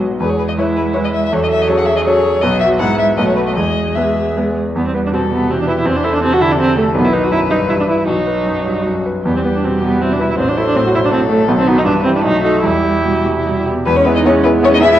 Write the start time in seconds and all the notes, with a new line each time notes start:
Already playing: B1 B3 F#4 B4
0.00 F#3
0.19 E2 G#3 G#4 B4
0.30 C#5
0.39 B4
0.48 D#5
0.58 G#3 E4 B4 C#5
0.77 B4
0.94 G#3 E4 B4 C#5
1.05 D#5
1.13 E5
1.25 E5
1.32 E2 F#3 A4 C#5
1.43 D#5
1.51 E5
1.61 D#5
1.67 F#3 C#4 G#4 A4 C#5
1.77 F#5
1.85 E5
1.96 D#5
2.04 F#3 C#4 A4 C#5
2.41 B1 F#3 B3 F#4 B4 D#5
2.60 E5
2.79 G#2 G#3 B3 E4 B4 F#5
2.99 E5
3.17 B1 A3 B3 F#4 B4 D#5
3.27 C#5
3.36 B4
3.47 D#5
3.55 E2 G#3 G#4 D#5
3.95 G#3 B3 B4 E5
4.37 G#3 B3 B4
4.75 E2 G3 B3
4.87 C4
4.94 B3 B4
5.06 D4
5.12 B2 C4 A4
5.31 C3 B3
5.49 B2 E3 C4 G4
5.60 D4
5.67 E4 B4
5.78 E4
5.84 E2 E3 C4 C5
5.96 D4
6.04 E4 A4
6.15 D4
6.23 C3 C4 A4
6.33 F#4
6.40 D3 E4
6.52 D4
6.59 C3 C4
6.77 A3 A4
6.95 B1 D#3 B3 B4
7.05 E4
7.13 D#4 B4
7.24 F#4
7.31 F#2 D#3 E4
7.50 G2 D#4
7.68 G2 E3 E4
7.80 D4
7.88 E4 B4
7.99 E4
8.07 B1 F#3 D#4 F#4
8.27 B4
8.46 F#2
8.66 G2
8.86 F#2
9.06 B4
9.25 E2 G3 B3 G4
9.36 C4
9.44 B3 B4
9.55 D4
9.63 B2 C4
9.82 C3 B3
10.00 B2 C4 E4
10.13 D4
10.19 E4 B4
10.30 E4
10.37 A1 F#3 C4 C5
10.48 D4
10.56 E4 A4
10.67 D4
10.75 A2 C4
10.86 F#4
10.93 B2 E4
11.05 D4
11.11 A2 C4 A4
11.29 A3 A4
11.48 B1 D#3 B3
11.59 C4
11.67 B3 D#4 F#4
11.78 D#4
11.84 G2 E3 D4 B4
12.04 C4 E4 G4
12.16 D4
12.22 B1 A3 D#4 F#4
12.43 D#4 F#4 A4
12.63 E2 G3 E4 G4
12.84 G4
13.04 B2 G3
13.25 C3 A3
13.46 B2 G3
13.66 B3 G4
13.85 E2 G#3 B3 B4
13.96 C#4 C#5
14.05 B3 E4 G#4 B4
14.16 D#4 D#5
14.25 B3 C#4 E4 G#4 C#5
14.43 B3 E4 G#4 B4
14.63 B3 C#4 E4 G#4 C#5
14.74 D#4 D#5
14.81 B3 E4 G#4 E5
14.92 E4 E5